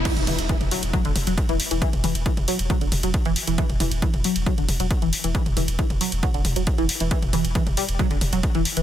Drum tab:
CC |x---------------|----------------|----------------|----------------|
RD |xxxxxxxxxxxxxxxx|xxxxxxxxxxxxxxxx|xxxxxxxxxxxxxxxx|xxxxxxxxxxxxxxxx|
HH |x-oxx-oxx-oxx-ox|x-oxx-oxx-oxx-ox|x-oxx-oxx-oxx-ox|x-oxx-oxx-oxx-ox|
T2 |-oo--o--o-o-----|-oo--o--o-o-----|-oo--o--o-o-----|-oo--o--o-o-----|
BD |o---o---o---o---|o---o---o---o---|o---o---o---o---|o---o---o---o---|

CC |----------------|
RD |xxxxxxxxxxxxxxxx|
HH |x-oxx-oxx-oxx-ox|
T2 |-oo--o--o-o-----|
BD |o---o---o---o---|